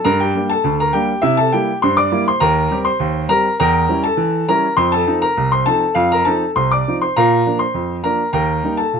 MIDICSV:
0, 0, Header, 1, 2, 480
1, 0, Start_track
1, 0, Tempo, 592300
1, 42, Time_signature, 2, 2, 24, 8
1, 7293, End_track
2, 0, Start_track
2, 0, Title_t, "Grand piano"
2, 0, Program_c, 0, 0
2, 37, Note_on_c, 0, 82, 111
2, 39, Note_on_c, 0, 43, 93
2, 46, Note_on_c, 0, 70, 90
2, 155, Note_off_c, 0, 70, 0
2, 159, Note_off_c, 0, 82, 0
2, 165, Note_on_c, 0, 79, 97
2, 178, Note_on_c, 0, 67, 72
2, 244, Note_off_c, 0, 43, 0
2, 284, Note_on_c, 0, 55, 63
2, 292, Note_on_c, 0, 58, 54
2, 294, Note_on_c, 0, 62, 63
2, 391, Note_off_c, 0, 79, 0
2, 393, Note_off_c, 0, 67, 0
2, 401, Note_on_c, 0, 81, 96
2, 414, Note_on_c, 0, 69, 76
2, 415, Note_off_c, 0, 55, 0
2, 420, Note_off_c, 0, 58, 0
2, 422, Note_off_c, 0, 62, 0
2, 519, Note_on_c, 0, 38, 81
2, 592, Note_off_c, 0, 81, 0
2, 630, Note_off_c, 0, 69, 0
2, 650, Note_on_c, 0, 82, 89
2, 661, Note_on_c, 0, 70, 62
2, 723, Note_off_c, 0, 38, 0
2, 754, Note_on_c, 0, 79, 97
2, 761, Note_on_c, 0, 55, 68
2, 762, Note_on_c, 0, 67, 82
2, 763, Note_off_c, 0, 70, 0
2, 764, Note_on_c, 0, 58, 64
2, 765, Note_off_c, 0, 82, 0
2, 765, Note_on_c, 0, 62, 56
2, 892, Note_off_c, 0, 55, 0
2, 894, Note_off_c, 0, 58, 0
2, 895, Note_off_c, 0, 62, 0
2, 983, Note_off_c, 0, 67, 0
2, 984, Note_off_c, 0, 79, 0
2, 987, Note_on_c, 0, 76, 112
2, 995, Note_on_c, 0, 48, 96
2, 995, Note_on_c, 0, 64, 78
2, 1108, Note_off_c, 0, 64, 0
2, 1112, Note_off_c, 0, 76, 0
2, 1113, Note_on_c, 0, 81, 102
2, 1124, Note_on_c, 0, 69, 82
2, 1200, Note_off_c, 0, 48, 0
2, 1232, Note_off_c, 0, 69, 0
2, 1235, Note_off_c, 0, 81, 0
2, 1236, Note_on_c, 0, 79, 92
2, 1242, Note_on_c, 0, 58, 56
2, 1245, Note_on_c, 0, 55, 57
2, 1245, Note_on_c, 0, 64, 65
2, 1248, Note_on_c, 0, 67, 72
2, 1372, Note_off_c, 0, 58, 0
2, 1374, Note_off_c, 0, 55, 0
2, 1375, Note_off_c, 0, 64, 0
2, 1428, Note_off_c, 0, 79, 0
2, 1466, Note_off_c, 0, 67, 0
2, 1477, Note_on_c, 0, 84, 102
2, 1484, Note_on_c, 0, 43, 85
2, 1488, Note_on_c, 0, 72, 80
2, 1595, Note_off_c, 0, 72, 0
2, 1596, Note_on_c, 0, 86, 107
2, 1597, Note_off_c, 0, 84, 0
2, 1606, Note_on_c, 0, 74, 76
2, 1685, Note_off_c, 0, 43, 0
2, 1716, Note_on_c, 0, 55, 67
2, 1716, Note_on_c, 0, 64, 70
2, 1717, Note_on_c, 0, 58, 62
2, 1824, Note_off_c, 0, 86, 0
2, 1825, Note_off_c, 0, 74, 0
2, 1846, Note_on_c, 0, 84, 103
2, 1848, Note_off_c, 0, 55, 0
2, 1848, Note_off_c, 0, 64, 0
2, 1849, Note_off_c, 0, 58, 0
2, 1852, Note_on_c, 0, 72, 73
2, 1948, Note_on_c, 0, 82, 113
2, 1952, Note_on_c, 0, 39, 100
2, 1956, Note_off_c, 0, 72, 0
2, 1959, Note_on_c, 0, 70, 84
2, 1961, Note_off_c, 0, 84, 0
2, 2157, Note_off_c, 0, 39, 0
2, 2195, Note_on_c, 0, 55, 63
2, 2200, Note_on_c, 0, 60, 63
2, 2201, Note_on_c, 0, 67, 72
2, 2239, Note_off_c, 0, 82, 0
2, 2292, Note_off_c, 0, 70, 0
2, 2307, Note_on_c, 0, 84, 104
2, 2314, Note_on_c, 0, 72, 83
2, 2326, Note_off_c, 0, 55, 0
2, 2330, Note_off_c, 0, 60, 0
2, 2331, Note_off_c, 0, 67, 0
2, 2429, Note_on_c, 0, 39, 85
2, 2597, Note_off_c, 0, 84, 0
2, 2635, Note_off_c, 0, 39, 0
2, 2648, Note_off_c, 0, 72, 0
2, 2666, Note_on_c, 0, 55, 70
2, 2667, Note_on_c, 0, 82, 114
2, 2671, Note_on_c, 0, 60, 57
2, 2676, Note_on_c, 0, 70, 84
2, 2677, Note_on_c, 0, 67, 64
2, 2800, Note_off_c, 0, 55, 0
2, 2803, Note_off_c, 0, 60, 0
2, 2808, Note_off_c, 0, 67, 0
2, 2861, Note_off_c, 0, 82, 0
2, 2897, Note_off_c, 0, 70, 0
2, 2915, Note_on_c, 0, 82, 112
2, 2918, Note_on_c, 0, 40, 94
2, 2920, Note_on_c, 0, 70, 84
2, 2924, Note_on_c, 0, 79, 87
2, 3119, Note_off_c, 0, 40, 0
2, 3153, Note_on_c, 0, 55, 65
2, 3153, Note_on_c, 0, 61, 57
2, 3160, Note_on_c, 0, 64, 66
2, 3251, Note_off_c, 0, 70, 0
2, 3253, Note_off_c, 0, 79, 0
2, 3255, Note_off_c, 0, 82, 0
2, 3271, Note_on_c, 0, 81, 99
2, 3284, Note_off_c, 0, 55, 0
2, 3284, Note_on_c, 0, 69, 78
2, 3285, Note_off_c, 0, 61, 0
2, 3289, Note_off_c, 0, 64, 0
2, 3380, Note_on_c, 0, 52, 85
2, 3589, Note_off_c, 0, 52, 0
2, 3613, Note_off_c, 0, 69, 0
2, 3613, Note_off_c, 0, 81, 0
2, 3635, Note_on_c, 0, 55, 65
2, 3635, Note_on_c, 0, 82, 104
2, 3640, Note_on_c, 0, 61, 56
2, 3641, Note_on_c, 0, 64, 64
2, 3643, Note_on_c, 0, 70, 79
2, 3766, Note_off_c, 0, 55, 0
2, 3769, Note_off_c, 0, 61, 0
2, 3770, Note_off_c, 0, 64, 0
2, 3825, Note_off_c, 0, 82, 0
2, 3860, Note_off_c, 0, 70, 0
2, 3863, Note_on_c, 0, 84, 116
2, 3865, Note_on_c, 0, 41, 95
2, 3871, Note_on_c, 0, 72, 83
2, 3982, Note_off_c, 0, 72, 0
2, 3987, Note_off_c, 0, 84, 0
2, 3988, Note_on_c, 0, 81, 106
2, 4001, Note_on_c, 0, 69, 83
2, 4072, Note_off_c, 0, 41, 0
2, 4109, Note_on_c, 0, 53, 60
2, 4109, Note_on_c, 0, 60, 57
2, 4111, Note_on_c, 0, 63, 73
2, 4181, Note_off_c, 0, 81, 0
2, 4220, Note_off_c, 0, 69, 0
2, 4229, Note_on_c, 0, 82, 102
2, 4240, Note_on_c, 0, 70, 77
2, 4241, Note_off_c, 0, 53, 0
2, 4242, Note_off_c, 0, 60, 0
2, 4243, Note_off_c, 0, 63, 0
2, 4354, Note_on_c, 0, 36, 80
2, 4458, Note_off_c, 0, 82, 0
2, 4459, Note_off_c, 0, 70, 0
2, 4471, Note_on_c, 0, 84, 98
2, 4481, Note_on_c, 0, 72, 70
2, 4557, Note_off_c, 0, 36, 0
2, 4585, Note_on_c, 0, 81, 104
2, 4588, Note_off_c, 0, 72, 0
2, 4591, Note_on_c, 0, 60, 61
2, 4592, Note_off_c, 0, 84, 0
2, 4592, Note_on_c, 0, 53, 57
2, 4594, Note_on_c, 0, 69, 82
2, 4597, Note_on_c, 0, 63, 64
2, 4723, Note_off_c, 0, 60, 0
2, 4725, Note_off_c, 0, 53, 0
2, 4728, Note_off_c, 0, 63, 0
2, 4817, Note_off_c, 0, 69, 0
2, 4817, Note_off_c, 0, 81, 0
2, 4819, Note_on_c, 0, 77, 102
2, 4824, Note_on_c, 0, 41, 93
2, 4825, Note_on_c, 0, 65, 81
2, 4941, Note_off_c, 0, 65, 0
2, 4946, Note_off_c, 0, 77, 0
2, 4958, Note_on_c, 0, 82, 102
2, 4970, Note_on_c, 0, 70, 79
2, 5032, Note_off_c, 0, 41, 0
2, 5065, Note_on_c, 0, 81, 92
2, 5070, Note_on_c, 0, 60, 56
2, 5071, Note_on_c, 0, 53, 59
2, 5074, Note_off_c, 0, 70, 0
2, 5075, Note_on_c, 0, 69, 68
2, 5076, Note_off_c, 0, 82, 0
2, 5079, Note_on_c, 0, 63, 67
2, 5203, Note_off_c, 0, 60, 0
2, 5204, Note_off_c, 0, 53, 0
2, 5209, Note_off_c, 0, 63, 0
2, 5261, Note_off_c, 0, 81, 0
2, 5298, Note_off_c, 0, 69, 0
2, 5314, Note_on_c, 0, 84, 98
2, 5315, Note_on_c, 0, 36, 76
2, 5321, Note_on_c, 0, 72, 74
2, 5429, Note_off_c, 0, 72, 0
2, 5434, Note_off_c, 0, 84, 0
2, 5442, Note_on_c, 0, 86, 88
2, 5455, Note_on_c, 0, 74, 73
2, 5519, Note_off_c, 0, 36, 0
2, 5572, Note_on_c, 0, 53, 58
2, 5572, Note_on_c, 0, 60, 52
2, 5576, Note_on_c, 0, 63, 58
2, 5630, Note_off_c, 0, 86, 0
2, 5668, Note_off_c, 0, 74, 0
2, 5685, Note_on_c, 0, 84, 87
2, 5695, Note_on_c, 0, 72, 69
2, 5699, Note_off_c, 0, 53, 0
2, 5699, Note_off_c, 0, 60, 0
2, 5702, Note_off_c, 0, 63, 0
2, 5797, Note_off_c, 0, 72, 0
2, 5799, Note_off_c, 0, 84, 0
2, 5807, Note_on_c, 0, 82, 109
2, 5811, Note_on_c, 0, 46, 101
2, 5813, Note_on_c, 0, 77, 73
2, 5817, Note_on_c, 0, 70, 71
2, 6007, Note_off_c, 0, 46, 0
2, 6043, Note_on_c, 0, 53, 53
2, 6049, Note_on_c, 0, 58, 55
2, 6051, Note_on_c, 0, 62, 62
2, 6139, Note_off_c, 0, 77, 0
2, 6141, Note_off_c, 0, 70, 0
2, 6143, Note_off_c, 0, 82, 0
2, 6152, Note_on_c, 0, 84, 92
2, 6161, Note_on_c, 0, 72, 68
2, 6173, Note_off_c, 0, 53, 0
2, 6177, Note_off_c, 0, 58, 0
2, 6178, Note_off_c, 0, 62, 0
2, 6274, Note_on_c, 0, 41, 70
2, 6442, Note_off_c, 0, 84, 0
2, 6479, Note_off_c, 0, 41, 0
2, 6493, Note_off_c, 0, 72, 0
2, 6507, Note_on_c, 0, 53, 48
2, 6513, Note_on_c, 0, 82, 91
2, 6516, Note_on_c, 0, 58, 47
2, 6519, Note_on_c, 0, 70, 75
2, 6521, Note_on_c, 0, 62, 61
2, 6642, Note_off_c, 0, 53, 0
2, 6648, Note_off_c, 0, 58, 0
2, 6652, Note_off_c, 0, 62, 0
2, 6707, Note_off_c, 0, 82, 0
2, 6741, Note_off_c, 0, 70, 0
2, 6750, Note_on_c, 0, 82, 89
2, 6751, Note_on_c, 0, 39, 86
2, 6755, Note_on_c, 0, 79, 73
2, 6760, Note_on_c, 0, 70, 70
2, 6958, Note_off_c, 0, 39, 0
2, 6994, Note_on_c, 0, 55, 44
2, 7003, Note_on_c, 0, 58, 47
2, 7006, Note_on_c, 0, 63, 59
2, 7093, Note_off_c, 0, 79, 0
2, 7095, Note_off_c, 0, 70, 0
2, 7097, Note_off_c, 0, 82, 0
2, 7110, Note_on_c, 0, 81, 84
2, 7121, Note_on_c, 0, 69, 62
2, 7128, Note_off_c, 0, 55, 0
2, 7135, Note_off_c, 0, 58, 0
2, 7137, Note_off_c, 0, 63, 0
2, 7238, Note_on_c, 0, 46, 61
2, 7293, Note_off_c, 0, 46, 0
2, 7293, Note_off_c, 0, 69, 0
2, 7293, Note_off_c, 0, 81, 0
2, 7293, End_track
0, 0, End_of_file